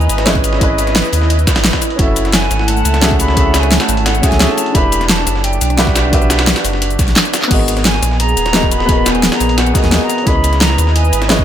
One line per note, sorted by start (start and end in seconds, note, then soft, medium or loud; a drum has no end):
0.00 0.23 C#4 medium
0.00 0.24 E4 medium
0.00 4.71 E4 medium
0.00 0.25 G#4 medium
0.00 0.25 B4 medium
0.00 1.96 B4 medium
0.00 0.26 D#5 medium
0.00 1.96 D#5 medium
0.00 0.27 G#5 medium
0.00 shaker soft
0.09 1.03 G#1 medium
0.09 closed hi-hat medium
0.09 shaker medium
0.18 cross-stick soft
0.18 snare medium
0.18 closed hi-hat soft
0.25 0.57 C#4 loud
0.25 0.58 E4 medium
0.25 0.59 G#4 medium
0.25 0.59 B4 medium
0.25 0.60 D#5 loud
0.25 snare loud
0.25 closed hi-hat medium
0.35 kick loud
0.44 closed hi-hat medium
0.44 shaker medium
0.53 snare soft
0.58 1.44 C#4 medium
0.58 1.45 E4 medium
0.58 1.45 G#4 medium
0.58 kick loud
0.58 closed hi-hat medium
0.63 1.46 B4 medium
0.63 1.47 D#5 loud
0.70 cross-stick soft
0.78 closed hi-hat medium
0.78 shaker medium
0.87 cross-stick soft
0.87 snare soft
0.87 closed hi-hat soft
0.96 snare loud
0.96 closed hi-hat medium
0.96 closed hi-hat loud
1.04 snare soft
1.04 shaker soft
1.13 1.46 D#2 loud
1.13 closed hi-hat medium
1.13 open hi-hat medium
1.13 shaker medium
1.22 snare soft
1.30 closed hi-hat medium
1.39 closed hi-hat soft
1.39 shaker soft
1.47 kick loud
1.47 snare loud
1.47 closed hi-hat medium
1.47 shaker medium
1.56 1.71 G#1 medium
1.56 snare loud
1.56 snare soft
1.56 closed hi-hat medium
1.56 closed hi-hat soft
1.64 snare loud
1.64 closed hi-hat medium
1.73 kick medium
1.73 snare loud
1.73 closed hi-hat medium
1.82 closed hi-hat medium
1.82 shaker medium
1.90 closed hi-hat soft
1.96 2.49 F#1 loud
1.96 4.72 A3 medium
1.96 2.99 C#4 medium
1.96 3.01 E4 medium
1.96 3.00 F#4 medium
1.96 4.72 F#5 medium
1.96 kick loud
1.96 closed hi-hat medium
2.01 3.01 A4 medium
2.01 3.02 E5 medium
2.08 cross-stick soft
2.16 closed hi-hat medium
2.16 shaker medium
2.25 cross-stick soft
2.25 snare soft
2.25 closed hi-hat soft
2.33 2.69 G#5 loud
2.33 snare loud
2.33 closed hi-hat medium
2.42 snare medium
2.51 2.84 G#1 loud
2.51 cross-stick soft
2.51 closed hi-hat medium
2.51 shaker medium
2.59 snare soft
2.68 3.19 A5 loud
2.68 closed hi-hat medium
2.77 shaker soft
2.85 3.79 C#2 medium
2.85 closed hi-hat medium
2.85 shaker medium
2.94 cross-stick soft
2.94 snare medium
2.94 closed hi-hat soft
3.01 3.32 C#4 medium
3.01 3.34 F#4 medium
3.01 3.35 G#4 medium
3.01 3.35 A4 medium
3.01 3.36 E5 loud
3.01 snare loud
3.01 closed hi-hat medium
3.11 kick loud
3.20 3.61 B5 loud
3.20 closed hi-hat medium
3.20 shaker medium
3.28 snare medium
3.34 4.19 C#4 medium
3.34 4.20 F#4 medium
3.34 4.21 G#4 medium
3.34 kick loud
3.34 closed hi-hat medium
3.38 4.22 A4 medium
3.38 4.23 E5 loud
3.46 cross-stick soft
3.54 snare loud
3.54 closed hi-hat medium
3.54 shaker medium
3.60 3.84 G#5 loud
3.60 cross-stick soft
3.60 closed hi-hat soft
3.71 snare loud
3.71 closed hi-hat medium
3.71 closed hi-hat loud
3.80 4.08 A5 loud
3.80 snare loud
3.80 closed hi-hat medium
3.80 shaker soft
3.89 4.22 G#1 loud
3.89 open hi-hat medium
3.89 shaker medium
3.97 closed hi-hat medium
4.06 4.30 F#5 loud
4.06 snare loud
4.06 closed hi-hat medium
4.15 closed hi-hat soft
4.15 shaker soft
4.22 4.37 C#4 medium
4.22 4.38 F#4 medium
4.22 4.38 G#4 medium
4.22 4.39 A4 medium
4.22 4.39 E5 medium
4.22 kick loud
4.22 snare medium
4.22 closed hi-hat medium
4.22 shaker medium
4.29 4.47 C#2 medium
4.29 4.54 G#5 medium
4.29 snare soft
4.29 closed hi-hat soft
4.39 4.72 C#4 medium
4.39 4.72 F#4 medium
4.39 4.73 G#4 medium
4.39 4.73 A4 medium
4.39 4.74 E5 medium
4.39 snare loud
4.39 closed hi-hat medium
4.49 4.76 A5 loud
4.49 snare soft
4.58 closed hi-hat medium
4.58 shaker medium
4.66 closed hi-hat soft
4.72 5.25 E1 medium
4.72 5.75 D4 medium
4.72 7.48 D4 medium
4.72 5.76 E4 medium
4.72 5.76 G4 medium
4.72 5.09 B5 loud
4.72 kick loud
4.72 closed hi-hat medium
4.76 5.77 B4 medium
4.76 5.78 E5 medium
4.84 cross-stick soft
4.92 closed hi-hat medium
4.92 shaker medium
5.01 cross-stick soft
5.01 snare soft
5.01 closed hi-hat soft
5.09 5.46 A5 loud
5.09 snare loud
5.09 closed hi-hat medium
5.09 closed hi-hat loud
5.18 snare medium
5.27 5.60 F#1 loud
5.27 cross-stick soft
5.27 closed hi-hat medium
5.27 shaker medium
5.35 snare soft
5.44 5.79 G5 medium
5.44 closed hi-hat medium
5.53 shaker soft
5.61 6.55 B1 medium
5.61 closed hi-hat medium
5.61 shaker medium
5.70 cross-stick soft
5.70 closed hi-hat soft
5.77 6.08 D4 medium
5.77 6.10 F#4 medium
5.77 6.11 G4 medium
5.77 6.11 B4 medium
5.77 6.12 E5 loud
5.77 snare loud
5.77 closed hi-hat medium
5.77 closed hi-hat loud
5.87 kick loud
5.87 snare medium
5.96 snare loud
5.96 closed hi-hat medium
5.96 shaker medium
6.10 6.95 D4 medium
6.10 6.96 F#4 medium
6.10 6.97 G4 medium
6.10 kick loud
6.10 closed hi-hat medium
6.14 6.98 B4 medium
6.14 6.99 E5 loud
6.22 cross-stick soft
6.22 shaker soft
6.30 snare loud
6.30 closed hi-hat medium
6.30 shaker medium
6.39 cross-stick soft
6.39 snare loud
6.39 closed hi-hat medium
6.39 closed hi-hat soft
6.47 snare loud
6.47 closed hi-hat medium
6.47 closed hi-hat loud
6.56 snare loud
6.56 closed hi-hat medium
6.56 shaker soft
6.64 6.98 F#1 loud
6.64 cross-stick soft
6.64 closed hi-hat medium
6.64 open hi-hat medium
6.64 shaker medium
6.73 snare soft
6.82 closed hi-hat medium
6.82 closed hi-hat loud
6.91 closed hi-hat soft
6.91 shaker soft
6.99 7.15 B1 medium
6.99 kick loud
6.99 snare medium
6.99 closed hi-hat medium
6.99 shaker medium
7.08 snare soft
7.08 closed hi-hat soft
7.16 snare loud
7.16 clap loud
7.16 closed hi-hat medium
7.16 closed hi-hat loud
7.25 snare soft
7.25 shaker soft
7.34 snare loud
7.34 closed hi-hat medium
7.34 shaker medium
7.42 snare soft
7.42 clap medium
7.48 8.01 G#1 medium
7.48 8.51 B3 medium
7.48 10.24 B3 medium
7.48 8.51 F#4 medium
7.48 10.24 G#4 medium
7.48 8.52 G#4 medium
7.48 kick loud
7.48 closed hi-hat medium
7.48 crash medium
7.52 8.53 A#4 medium
7.52 8.54 D#5 medium
7.59 cross-stick soft
7.68 closed hi-hat medium
7.68 shaker medium
7.77 cross-stick soft
7.77 snare soft
7.77 closed hi-hat soft
7.85 8.17 G#5 loud
7.85 snare loud
7.85 closed hi-hat loud
7.85 closed hi-hat medium
7.94 snare medium
8.02 8.36 A#1 loud
8.02 cross-stick soft
8.02 closed hi-hat medium
8.02 shaker medium
8.11 snare soft
8.20 8.73 A#5 loud
8.20 closed hi-hat loud
8.20 closed hi-hat medium
8.29 shaker soft
8.37 9.30 D#1 medium
8.37 closed hi-hat medium
8.37 shaker medium
8.46 cross-stick soft
8.46 snare medium
8.46 closed hi-hat soft
8.53 8.84 B3 medium
8.53 8.86 F#4 medium
8.53 8.87 G#4 medium
8.53 8.87 A#4 medium
8.53 8.88 D#5 loud
8.53 snare loud
8.53 closed hi-hat medium
8.63 kick loud
8.71 9.13 B5 loud
8.71 closed hi-hat medium
8.71 shaker medium
8.80 snare soft
8.86 9.71 B3 medium
8.86 9.72 F#4 medium
8.86 9.73 G#4 medium
8.86 kick loud
8.86 closed hi-hat medium
8.90 9.74 A#4 medium
8.90 9.74 D#5 loud
8.97 cross-stick soft
9.06 snare loud
9.06 closed hi-hat medium
9.06 shaker medium
9.12 9.37 G#5 loud
9.12 cross-stick soft
9.12 closed hi-hat soft
9.23 snare loud
9.23 closed hi-hat medium
9.23 closed hi-hat loud
9.32 9.59 A#5 loud
9.32 snare loud
9.32 closed hi-hat medium
9.32 shaker soft
9.40 9.74 A#1 loud
9.40 open hi-hat medium
9.40 shaker medium
9.49 closed hi-hat medium
9.58 9.80 F#5 loud
9.58 snare loud
9.58 closed hi-hat medium
9.67 closed hi-hat soft
9.67 shaker soft
9.73 9.89 B3 medium
9.73 9.90 F#4 medium
9.73 9.90 G#4 medium
9.73 9.91 A#4 medium
9.73 9.91 D#5 medium
9.73 kick loud
9.73 snare medium
9.73 closed hi-hat medium
9.73 shaker medium
9.81 9.99 D#2 medium
9.81 10.06 G#5 medium
9.81 snare soft
9.81 closed hi-hat soft
9.91 10.24 B3 medium
9.91 10.24 F#4 medium
9.91 10.25 G#4 medium
9.91 10.25 A#4 medium
9.91 10.25 D#5 loud
9.91 snare loud
9.91 closed hi-hat medium
10.01 10.29 A#5 loud
10.01 snare soft
10.09 closed hi-hat medium
10.09 shaker medium
10.18 closed hi-hat soft
10.24 10.77 C#2 loud
10.24 11.27 C#4 medium
10.24 11.27 E4 medium
10.24 11.45 E4 medium
10.24 11.28 G#4 medium
10.24 11.45 B4 medium
10.24 11.45 D#5 medium
10.24 10.63 B5 loud
10.24 kick loud
10.24 closed hi-hat medium
10.28 11.29 B4 medium
10.28 11.30 D#5 medium
10.35 cross-stick soft
10.44 closed hi-hat medium
10.44 shaker medium
10.53 cross-stick soft
10.53 snare soft
10.53 closed hi-hat soft
10.61 10.95 A#5 loud
10.61 snare loud
10.61 closed hi-hat medium
10.70 snare medium
10.78 11.11 D#2 loud
10.78 cross-stick soft
10.78 closed hi-hat medium
10.78 shaker medium
10.87 snare soft
10.96 11.28 G#5 medium
10.96 closed hi-hat medium
11.04 shaker soft
11.13 11.45 G#1 medium
11.13 closed hi-hat medium
11.13 shaker medium
11.22 cross-stick soft
11.22 snare medium
11.22 closed hi-hat soft
11.28 11.45 C#4 medium
11.28 11.45 E4 medium
11.28 11.45 G#4 medium
11.28 11.45 B4 medium
11.28 11.45 D#5 loud
11.28 snare loud
11.28 closed hi-hat medium
11.39 kick loud